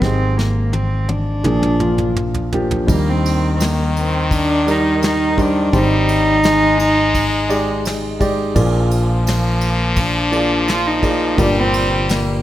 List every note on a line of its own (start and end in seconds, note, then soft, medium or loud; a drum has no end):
0.01 1.42 G#1 medium
0.01 1.41 G#1 medium
0.01 1.41 G#2 medium
0.01 0.39 C4 loud
0.01 1.17 C4 medium
0.01 1.17 D#4 medium
0.01 1.17 G4 medium
0.01 1.17 G#4 medium
0.01 kick medium
0.01 snare soft
0.37 0.74 A#3 medium
0.37 snare medium
0.73 1.10 C4 medium
0.73 high tom soft
1.09 2.53 D4 medium
1.09 high tom medium
1.44 2.84 A#1 soft
1.44 2.86 A#1 medium
1.44 2.84 A#2 medium
1.44 1.73 F3 medium
1.44 1.73 A#3 medium
1.44 1.73 D4 medium
1.44 1.74 G#4 medium
1.44 mid tom medium
1.63 mid tom soft
1.79 2.38 F3 medium
1.79 2.38 A#3 medium
1.79 2.38 D4 soft
1.79 2.38 F4 medium
1.79 mid tom medium
1.98 mid tom medium
2.16 mid tom medium
2.34 floor tom medium
2.52 2.81 F3 medium
2.52 2.81 A#3 medium
2.52 2.82 D4 medium
2.52 2.82 G4 medium
2.52 floor tom medium
2.71 floor tom medium
2.87 5.69 D#2 medium
2.87 5.69 D#3 soft
2.87 5.70 D#3 medium
2.87 4.02 G3 medium
2.87 4.03 D4 medium
2.87 4.03 D#4 medium
2.87 4.03 A#4 medium
2.87 kick loud
2.87 ride medium
2.92 3.11 A#3 medium
3.10 3.55 C4 medium
3.26 ride medium
3.55 3.64 C4 medium
3.60 3.97 A#3 medium
3.60 snare medium
3.60 ride medium
3.96 4.31 C4 medium
3.96 ride soft
4.31 4.72 D4 loud
4.31 kick medium
4.31 ride medium
4.66 5.24 G3 medium
4.66 5.24 D#4 medium
4.66 5.24 A#4 medium
4.66 5.24 D5 medium
4.66 ride soft
4.71 5.04 D#4 loud
5.02 5.43 D#4 loud
5.02 snare medium
5.02 ride medium
5.37 5.66 G3 medium
5.37 5.66 D4 medium
5.37 5.66 D#4 medium
5.37 5.67 C5 medium
5.37 kick medium
5.37 ride soft
5.42 5.80 D4 medium
5.73 8.52 G#1 medium
5.73 8.52 G#2 medium
5.73 6.40 G3 medium
5.73 6.87 C4 medium
5.73 6.87 D#4 medium
5.73 6.87 G4 medium
5.73 6.87 C5 medium
5.73 kick medium
5.73 ride medium
5.79 8.23 D#4 loud
6.09 ride soft
6.43 8.25 G#3 loud
6.43 snare medium
6.43 ride medium
6.79 ride medium
7.15 kick medium
7.15 ride medium
7.49 8.06 G#3 medium
7.49 8.06 D#4 medium
7.49 8.07 G4 medium
7.49 8.06 D5 medium
7.49 ride medium
7.85 snare medium
7.85 ride medium
8.19 8.48 G#3 medium
8.19 8.49 D#4 medium
8.19 8.49 G4 medium
8.19 8.49 D5 loud
8.19 kick medium
8.19 ride medium
8.55 11.34 A#1 medium
8.55 11.34 A#2 medium
8.55 11.40 F3 loud
8.55 9.69 A#3 medium
8.55 9.69 F4 medium
8.55 9.69 G#4 medium
8.55 9.69 D5 medium
8.55 kick medium
8.55 ride medium
8.91 ride medium
9.27 snare medium
9.27 ride medium
9.31 10.01 A#3 medium
9.61 ride medium
9.96 10.71 D4 loud
9.96 kick medium
9.96 ride medium
10.31 10.88 A#3 medium
10.31 10.89 F4 medium
10.31 10.89 G#4 medium
10.31 10.89 D5 medium
10.31 ride soft
10.68 10.88 F4 loud
10.68 snare medium
10.68 ride medium
10.87 11.43 D#4 medium
11.02 11.31 A#3 medium
11.02 11.31 F4 medium
11.02 11.31 G#4 medium
11.02 11.31 D5 medium
11.02 kick medium
11.02 ride soft
11.37 12.42 G1 medium
11.37 12.42 A#2 medium
11.37 12.42 G3 loud
11.37 12.42 A#3 medium
11.37 12.42 F4 medium
11.37 12.42 G4 medium
11.37 12.42 D5 medium
11.37 kick medium
11.37 ride medium
11.41 11.58 D4 loud
11.59 12.12 C4 loud
11.74 ride medium
12.09 12.42 A#3 medium
12.09 snare medium
12.09 ride medium